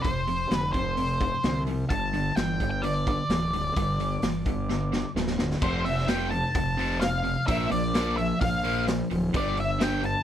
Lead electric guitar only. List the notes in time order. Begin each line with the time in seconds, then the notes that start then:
0.02 C5
0.53 B4
0.73 C5
1.90 A5
2.37 G5
2.71 G5
2.82 D5
5.63 C5
5.85 E5
6.09 G5
6.31 A5
7.01 F5
7.47 E5
7.72 D5
8.17 E5
8.41 F5
9.37 D5
9.60 E5
9.83 G5
10.05 A5